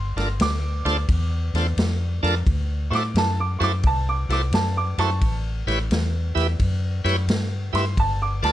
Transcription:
Already playing: G1 C6
0.16 G1 D4 F4 A4 A#4, snare, ride
0.40 D2 D6, snare, ride
0.85 D2 D4 F4 A4 C5, snare, ride
1.09 E2, kick, ride
1.54 E2 D4 F4 A4 C5, snare, ride
1.77 F2, snare, ride
2.23 F2 D4 F4 A4 A#4, snare, ride
2.47 D2, kick, ride
2.90 A2 E4 F#4 A4 C5 C#6, snare, ride
2.95 D6
3.14 F#2 A5, snare, ride
3.40 D6
3.59 F#2 E4 F#4 A4 C5 C#6, snare, ride
3.63 D6
3.83 C2 A5, kick, ride
4.09 D6
4.29 C2 E4 F#4 A4 C5 D6, snare, ride
4.52 F#2 A5, snare, ride
4.77 D6
4.98 F#2 E4 F#4 A4 C5 A5 C#6, snare, ride
5.21 A1, kick, ride
5.67 A1 E4 G4 B4 C#5, snare, ride
5.91 E2, snare, ride
6.35 E2 E4 G4 B4 E5, snare, ride
6.59 F#2, kick, ride
7.04 F#2 E4 G4 B4 C#5, snare, ride
7.27 G2, snare, ride
7.73 G2 E4 G4 B4 E5 C6, snare, ride
7.97 G1 A5, kick, ride
8.22 D6
8.42 D2 F4 A4 B4 D5 A5, snare, ride

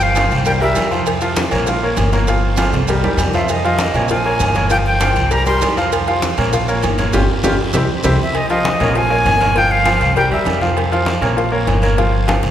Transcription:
Already playing: G1 F3 F4 F5
0.00 F5, high conga, maracas
0.15 F3 F4 F5, cowbell, high conga, low timbale, low agogo, short guiro, maracas
0.31 C2, cowbell, high conga, short guiro, maracas
0.45 G3 G4 A#4 G5, cowbell, high conga, low agogo, long guiro, maracas
0.61 G3 G4 A#4 E5, high conga, low agogo
0.75 F2, cowbell, high conga, low timbale, low agogo, short guiro, maracas
0.91 F3 F4 F5, high conga, short guiro, maracas
1.06 cowbell, high conga, low agogo, long guiro, maracas
1.21 F3 F4 F5, cowbell, high conga, low agogo, maracas
1.36 cowbell, high conga, low timbale, short guiro, maracas
1.51 A#1 A#3 A#4 C#5, high conga, low conga, low agogo, short guiro, maracas
1.67 F3 F4 F5, cowbell, high conga, low conga, long guiro, maracas
1.83 A#3 A#4 C#5, high conga
1.97 G1, cowbell, high conga, low timbale, low agogo, short guiro, maracas
2.12 A#3 A#4 C#5, cowbell, high conga, short guiro, maracas
2.27 F3 F4 F5, cowbell, high conga, low agogo, long guiro, maracas
2.43 high conga
2.57 F3 F4 F5, cowbell, high conga, high timbale, low agogo, short guiro, maracas
2.72 C2, cowbell, high conga, high timbale, short guiro, maracas
2.88 G3 G4 A#4, cowbell, high conga, high timbale, low agogo, long guiro, maracas
3.03 E2 G3 G4 A#4, high conga, low timbale, low agogo
3.17 F2, cowbell, high conga, low timbale, low agogo, short guiro, maracas
3.33 F3 F4 E5 F5, high conga, low timbale, short guiro, maracas
3.48 D#5, cowbell, high conga, low agogo, long guiro, maracas
3.63 F3 F4 D#5 F5, cowbell, high conga, low agogo
3.79 cowbell, high conga, low timbale, short guiro, maracas
3.94 A#1 A#3 A#4 C#5, high conga, low conga, low agogo, short guiro, maracas
4.08 F3 F4 F5 G#5, cowbell, high conga, long guiro, maracas
4.25 A#3 A#4 C#5, high conga
4.40 G1, cowbell, high conga, low timbale, low agogo, short guiro, maracas
4.54 A#3 A#4 C#5, cowbell, high conga, short guiro, maracas
4.70 F3 F4 F5 G5, cowbell, high conga, low agogo, long guiro, maracas
4.86 G5, high conga
5.00 F3 F4 F5, cowbell, high conga, low timbale, low agogo, short guiro, maracas
5.16 C2, cowbell, high conga, short guiro, maracas
5.31 G3 G4 A#4 A#5, cowbell, high conga, low agogo, long guiro, maracas
5.46 G3 G4 A#4 C6, high conga, low agogo, maracas
5.62 F2, cowbell, high conga, low timbale, low agogo, short guiro, maracas
5.77 F3 F4 F5, short guiro, maracas
5.92 cowbell, high conga, low agogo, long guiro, maracas
6.07 F3 F4 F5, cowbell, high conga, low agogo
6.22 cowbell, high conga, low timbale, short guiro, maracas
6.37 A#1 A#3 A#4 C#5, high conga, low conga, low agogo, short guiro, maracas
6.53 F3 F4 F5, cowbell, high conga, low conga, long guiro, maracas
6.68 A#3 A#4 C#5, high conga, maracas
6.82 G1, cowbell, high conga, low timbale, low agogo, short guiro, maracas
6.98 A#3 A#4 C#5, cowbell, high conga, short guiro, maracas
7.13 G1 C#4 F4 G4, cowbell, high conga, high timbale, long guiro, maracas
7.44 G1 C#4 F4 G4, cowbell, high conga, high timbale, long guiro, maracas
7.73 C2 C4 E4 G4, cowbell, high conga, high timbale, long guiro, maracas
8.04 C2 C4 E4 G4, cowbell, high conga, high timbale, long guiro, maracas
8.22 E5
8.34 D#5, cowbell, high conga, low agogo, long guiro
8.50 F3 F4 D#5 F5, cowbell, high conga, low agogo
8.65 cowbell, high conga, low timbale, short guiro
8.80 A#1 A#3 A#4 C#5, high conga, low conga, low agogo, short guiro
8.95 F3 F4 F5 G#5, cowbell, high conga, long guiro
9.10 A#3 A#4 C#5, high conga
9.25 G1, cowbell, high conga, low timbale, low agogo, short guiro
9.41 A#3 A#4 C#5, cowbell, high conga, short guiro
9.56 F3 F4 F5 G5, cowbell, high conga, low agogo, long guiro
9.71 F5, high conga
9.86 F3 F4 F5, cowbell, high conga, low timbale, low agogo, short guiro
10.00 C2, cowbell, high conga, short guiro
10.16 G3 G4 A#4 G5, cowbell, high conga, low agogo, long guiro
10.31 E2 G3 G4 A#4 E5, high conga, low agogo
10.45 F2, cowbell, high conga, low timbale, low agogo, short guiro
10.61 F3 F4 F5, high conga, short guiro
10.76 cowbell, high conga, low agogo, long guiro
10.92 F3 F4 F5, cowbell, high conga, low agogo
11.06 cowbell, high conga, low timbale, short guiro
11.21 A#1 A#3 A#4 C#5, high conga, low conga, low agogo, short guiro
11.37 F3 F4 F5, cowbell, high conga, long guiro
11.52 A#3 A#4 C#5, high conga
11.67 G1, cowbell, high conga, low timbale, low agogo, short guiro
11.82 A#3 A#4 C#5, cowbell, high conga, short guiro
11.98 F3 F4 F5, cowbell, high bongo, high conga, low agogo, long guiro
12.14 high conga
12.28 F3 F4 F5, cowbell, high conga, low timbale, low agogo, short guiro
12.43 C2, cowbell, low bongo, high conga, short guiro

